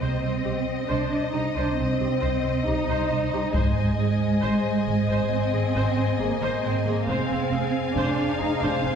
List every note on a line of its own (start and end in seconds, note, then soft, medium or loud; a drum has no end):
0.00 0.10 C2 soft
0.00 0.87 C4 medium
0.00 3.37 C5 soft
0.00 0.22 C5 soft
0.00 3.37 D#5 soft
0.00 3.50 D#5 soft
0.24 0.32 C2 soft
0.24 0.32 C5 soft
0.45 0.55 C2 soft
0.45 0.53 G4 soft
0.88 0.99 C2 medium
0.88 1.32 D4 medium
0.88 1.09 C5 soft
1.33 1.43 C2 soft
1.33 1.55 D#4 soft
1.33 1.42 G4 soft
1.56 1.65 C2 medium
1.56 1.78 D4 medium
1.56 1.76 C5 soft
1.77 1.87 C2 soft
1.77 2.64 C4 medium
1.77 1.85 C5 soft
1.99 2.09 C2 soft
1.99 2.07 G4 soft
2.21 2.31 C2 medium
2.21 2.41 C5 soft
2.42 2.53 C2 soft
2.42 2.50 C5 soft
2.65 2.75 C2 soft
2.65 3.54 D#4 medium
2.65 2.73 G4 soft
2.89 2.97 C2 medium
2.89 3.09 C5 soft
3.11 3.19 C2 soft
3.11 3.20 C5 soft
3.33 3.41 C2 soft
3.33 3.41 G4 soft
3.54 3.64 G#1 soft
3.54 5.31 G#3 medium
3.54 7.03 C5 soft
3.54 3.75 C5 medium
3.54 7.03 D#5 soft
3.54 7.04 D#5 soft
3.54 7.03 G#5 soft
3.54 taiko medium
3.76 3.86 G#1 soft
3.76 3.84 C5 soft
3.98 4.08 G#1 soft
3.98 4.06 G#4 soft
4.42 4.51 G#1 medium
4.42 4.63 C5 medium
4.87 4.96 G#1 soft
4.87 4.95 G#4 soft
5.10 5.18 G#1 medium
5.10 5.30 C5 soft
5.32 5.41 G#1 soft
5.32 6.20 C4 medium
5.32 5.40 C5 soft
5.53 5.62 G#1 soft
5.53 5.61 G#4 soft
5.76 5.84 G#1 medium
5.76 5.96 C5 medium
5.98 6.06 G#1 soft
5.98 6.06 C5 soft
6.19 6.28 G#1 soft
6.19 6.63 A#3 medium
6.19 6.28 G#4 soft
6.42 6.50 G#1 medium
6.42 6.62 C5 medium
6.64 6.72 G#1 soft
6.64 6.85 C4 medium
6.64 6.73 C5 soft
6.86 6.94 G#1 soft
6.86 7.08 A#3 medium
6.86 6.95 G#4 soft
7.07 7.17 F1 medium
7.07 7.96 C4 medium
7.07 8.95 G#4 soft
7.07 8.95 C5 soft
7.07 7.29 C5 soft
7.07 8.95 F5 medium
7.07 8.95 G#5 soft
7.31 7.39 F1 soft
7.31 7.39 C5 soft
7.52 7.60 F1 soft
7.52 7.61 G#4 soft
7.95 8.04 F1 medium
7.95 8.39 D4 medium
7.95 8.17 C5 medium
8.39 8.49 F1 soft
8.39 8.61 D#4 medium
8.39 8.49 G#4 soft
8.62 8.70 F1 medium
8.62 8.84 D4 medium
8.62 8.83 C5 medium
8.82 8.92 F1 soft
8.82 8.95 C4 medium
8.82 8.94 C5 soft